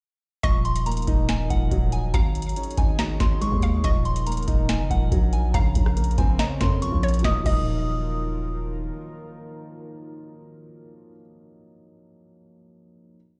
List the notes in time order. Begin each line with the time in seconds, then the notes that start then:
0.43 D#1 D#3 F3 D#4 A#4 D#5 C#6, kick, closed hi-hat
0.65 C6, closed hi-hat
0.76 closed hi-hat
0.86 A#3 A#5, closed hi-hat
0.92 closed hi-hat
0.97 closed hi-hat
1.02 closed hi-hat
1.07 D#1 D#4, kick, closed hi-hat
1.29 G#5, snare, closed hi-hat
1.50 D#1 F3 F#5, kick, closed hi-hat
1.71 D#1 F#3, kick, closed hi-hat
1.92 G#5, closed hi-hat
2.14 G#1 F#3 D#4 G#4 C#5 F5 A#5, kick, closed hi-hat
2.35 closed hi-hat
2.42 closed hi-hat
2.49 closed hi-hat
2.56 C#4, closed hi-hat
2.63 closed hi-hat
2.71 closed hi-hat
2.77 G#1 D#4 G#5, kick, closed hi-hat
2.99 F#4 D#5 A#5, snare, closed hi-hat
3.20 G#1 F#3 C6, kick, snare, closed hi-hat
3.41 G#3 C#6, closed hi-hat
3.52 D#2, kick
3.62 F5, closed hi-hat
3.84 D#1 F3 A#4 D#5 C#6, kick, closed hi-hat
4.05 C6, closed hi-hat
4.16 closed hi-hat
4.27 A#3 A#5, closed hi-hat
4.32 closed hi-hat
4.37 closed hi-hat
4.43 closed hi-hat
4.48 D#1 D#4, kick, closed hi-hat
4.69 G#5, snare, closed hi-hat
4.80 F#1
4.90 D#1 F3 F#5, kick, closed hi-hat
5.12 A#1 F#3, kick, closed hi-hat
5.33 G#5, closed hi-hat
5.54 A#1 C#3 A#3 A#4 F5 A#5, kick, closed hi-hat
5.75 A#1, kick, closed hi-hat
5.86 cross-stick
5.97 A#3, closed hi-hat
6.04 closed hi-hat
6.11 closed hi-hat
6.18 A#1 C4 G#5, kick, closed hi-hat
6.39 C#4 D#5 A#5, snare, closed hi-hat
6.61 F2 C#3 C6, kick, snare, closed hi-hat
6.82 F3 C#6, closed hi-hat
6.93 A#1
7.03 C#5, closed hi-hat
7.08 closed hi-hat
7.14 closed hi-hat
7.18 F3 F#3, closed hi-hat
7.24 D#1 D#3 A#3 D#4 F4 A#4 D#5 D#6, kick, snare
7.30 D#4
7.40 F3 F#3
7.46 D#1 A#3 D#5 D#6, kick, crash
7.52 D#4